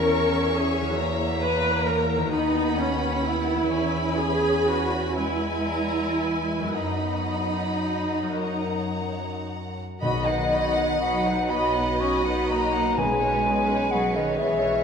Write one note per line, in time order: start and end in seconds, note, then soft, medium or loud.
0.00 2.29 E2 medium
0.00 0.80 E3 soft
0.00 0.96 B3 soft
0.00 0.97 C#4 medium
0.00 0.98 G#4 soft
0.00 0.56 A#4 medium
0.00 1.01 B4 soft
0.00 0.93 C#5 soft
0.00 2.34 C#5 medium
0.00 2.34 E5 medium
0.00 1.00 C#6 medium
0.56 0.99 G#4 medium
0.81 2.28 E3 medium
0.86 2.30 C#4 soft
0.90 2.24 F#4 soft
0.94 2.35 C#5 soft
0.99 2.30 A#3 medium
0.99 2.31 A#5 medium
1.42 1.84 B4 medium
1.87 2.33 A#4 medium
2.16 3.68 D#3 medium
2.21 3.59 B3 soft
2.25 3.73 F#4 soft
2.30 3.70 D#2 medium
2.30 2.78 D#4 medium
2.30 6.73 B4 medium
2.30 3.75 D#5 soft
2.30 3.70 F#5 medium
2.34 3.73 B3 medium
2.34 3.72 B5 medium
2.78 3.25 C#4 medium
3.25 4.20 E4 medium
3.55 6.73 E3 medium
3.60 6.61 B3 soft
3.64 6.77 G#4 soft
3.69 6.73 E2 medium
3.69 6.79 C#5 soft
3.69 5.15 G#5 medium
3.73 5.15 C#4 medium
3.73 5.15 B5 medium
4.19 4.67 G#4 medium
4.67 5.18 F#4 medium
5.17 6.77 G#3 soft
5.17 6.74 E4 medium
5.17 6.77 G#5 medium
5.17 5.69 B5 soft
5.68 6.22 A#5 soft
6.21 6.76 G#5 soft
6.58 8.21 F#2 soft
6.63 8.39 B3 soft
6.67 8.30 F#4 soft
6.71 8.43 B4 soft
6.71 8.37 D#5 soft
6.71 8.38 F#5 soft
6.76 9.78 F#2 soft
6.76 9.23 F#3 soft
6.76 9.50 D#4 medium
6.76 8.42 B5 soft
8.23 9.98 F#2 soft
8.27 10.00 C#4 soft
8.31 11.99 F#4 soft
8.36 10.05 A#4 soft
8.36 9.81 C#5 soft
8.36 9.78 F#5 soft
8.41 9.79 A#5 soft
10.02 11.33 B1 medium
10.02 11.46 B2 medium
10.02 12.97 B2 medium
10.02 10.98 D#3 medium
10.02 12.95 F#3 medium
10.02 12.94 D#4 medium
10.02 10.26 F#4 soft
10.02 10.26 D#5 medium
10.02 10.97 D#5 medium
10.02 11.46 F#5 medium
10.02 10.26 B5 medium
10.27 10.53 D#4 soft
10.27 10.53 B4 soft
10.27 10.53 F#5 soft
10.52 12.49 D#4 soft
10.52 10.77 F#4 soft
10.52 10.77 D#5 soft
10.52 10.78 B5 soft
10.77 11.02 D#4 soft
10.77 11.02 B4 medium
10.77 11.02 F#5 soft
11.00 11.51 F#3 medium
11.00 11.24 F#4 soft
11.00 14.84 B4 soft
11.00 11.24 D#5 soft
11.00 11.52 F#5 medium
11.00 11.25 B5 soft
11.26 11.51 D#4 soft
11.26 11.51 B4 soft
11.26 11.52 F#5 soft
11.50 12.82 B1 medium
11.50 12.01 B3 medium
11.50 11.75 F#4 soft
11.50 11.75 D#5 soft
11.50 13.03 D#5 soft
11.50 12.96 D#5 medium
11.50 12.02 B5 medium
11.50 11.76 B5 soft
11.74 12.00 D#4 soft
11.74 12.00 B4 soft
11.74 12.00 F#5 soft
12.00 12.26 C#4 medium
12.00 12.24 F#4 soft
12.00 13.03 F#4 soft
12.00 12.24 D#5 soft
12.00 12.24 B5 soft
12.00 12.25 C#6 medium
12.25 12.50 B3 medium
12.25 12.50 D#4 soft
12.25 12.50 B4 soft
12.25 12.50 F#5 soft
12.25 12.49 B5 medium
12.48 12.99 A#3 medium
12.48 13.03 D#4 soft
12.48 12.75 F#4 soft
12.48 12.75 D#5 soft
12.48 13.00 A#5 medium
12.48 12.74 B5 soft
12.73 12.99 D#4 soft
12.73 12.99 B4 soft
12.73 12.98 F#5 soft
12.97 14.22 B1 medium
12.97 14.34 B2 medium
12.97 14.84 B2 medium
12.97 14.84 G#3 medium
12.97 13.93 G#3 medium
12.97 13.21 B3 soft
12.97 14.84 C#4 medium
12.97 13.21 G#4 soft
12.97 13.20 B4 medium
12.97 14.39 B4 medium
12.97 13.93 G#5 medium
13.21 13.46 C#4 soft
13.21 13.46 B4 soft
13.21 13.45 C#5 soft
13.44 13.69 B3 soft
13.44 14.84 C#4 soft
13.44 13.69 G#4 soft
13.44 13.68 B4 soft
13.67 13.92 C#4 medium
13.67 13.92 B4 soft
13.67 13.91 C#5 soft
13.89 14.16 F#3 medium
13.89 14.14 B3 soft
13.89 14.14 G#4 soft
13.89 14.12 B4 soft
13.89 14.84 C#5 soft
13.89 14.18 F#5 medium
14.13 14.39 D#3 medium
14.13 14.39 C#4 soft
14.13 14.39 B4 soft
14.13 14.38 C#5 soft
14.13 14.40 D#5 medium
14.37 14.84 B1 medium
14.37 14.84 E3 medium
14.37 14.62 B3 soft
14.37 14.62 G#4 soft
14.37 14.84 G#4 soft
14.37 14.61 B4 soft
14.37 14.84 C#5 medium
14.37 14.84 E5 medium
14.59 14.84 C#4 soft
14.59 14.84 B4 soft
14.59 14.84 C#5 soft